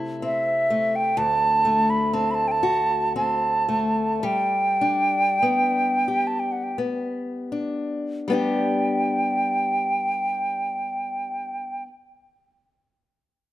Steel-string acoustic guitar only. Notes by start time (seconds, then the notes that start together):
Already playing: C3 A3 C4 E4
0.22 C4
0.70 A3
1.17 D2
1.65 A3
2.13 C4
2.63 F#4
3.16 C4
3.68 A3
4.23 G3
4.81 D4
5.43 B3
6.08 G4
6.78 B3
7.52 D4
8.28 G3 B3 D4
8.33 G4